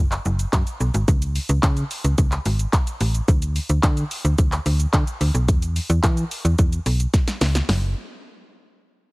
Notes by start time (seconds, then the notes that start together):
0.00 F#1
0.12 clap, closed hi-hat, shaker
0.25 F#1, shaker
0.39 closed hi-hat, shaker
0.53 F#2, kick, clap, closed hi-hat, shaker
0.67 closed hi-hat, shaker
0.80 B1, shaker
0.94 G#1, closed hi-hat, shaker
1.08 C#2, kick, closed hi-hat, shaker
1.22 closed hi-hat, shaker
1.36 open hi-hat, shaker
1.49 C#2, closed hi-hat, shaker
1.63 C#3, kick, clap, closed hi-hat, shaker
1.77 closed hi-hat, shaker
1.91 open hi-hat, shaker
2.04 C#2, closed hi-hat, shaker
2.18 C#2, kick, closed hi-hat, shaker
2.32 clap, closed hi-hat, shaker
2.46 G#1, open hi-hat, shaker
2.59 closed hi-hat, shaker
2.73 kick, clap, closed hi-hat, shaker
2.87 closed hi-hat, shaker
3.01 A1, open hi-hat, shaker
3.15 closed hi-hat, shaker
3.28 D2, kick, closed hi-hat, shaker
3.42 closed hi-hat, shaker
3.56 open hi-hat, shaker
3.69 D2, closed hi-hat, shaker
3.83 D3, kick, clap, closed hi-hat, shaker
3.97 closed hi-hat, shaker
4.11 open hi-hat, shaker
4.25 D2, closed hi-hat, shaker
4.38 D2, kick, closed hi-hat, shaker
4.52 clap, closed hi-hat, shaker
4.66 D2, open hi-hat, shaker
4.80 closed hi-hat, shaker
4.93 D3, kick, clap, closed hi-hat, shaker
5.07 closed hi-hat, shaker
5.21 D2, open hi-hat, shaker
5.34 B1, closed hi-hat, shaker
5.49 E2, kick, closed hi-hat, shaker
5.62 closed hi-hat, shaker
5.76 open hi-hat, shaker
5.90 E2, closed hi-hat, shaker
6.04 E3, kick, clap, closed hi-hat, shaker
6.17 closed hi-hat, shaker
6.31 open hi-hat, shaker
6.45 E2, closed hi-hat, shaker
6.59 E2, kick, closed hi-hat, shaker
6.73 closed hi-hat, shaker
6.86 B1, open hi-hat, shaker
7.00 closed hi-hat, shaker
7.14 kick, snare, closed hi-hat, shaker
7.28 snare, closed hi-hat, shaker
7.41 C#2, snare, open hi-hat, shaker
7.55 snare, closed hi-hat, shaker
7.69 F#1, snare, open hi-hat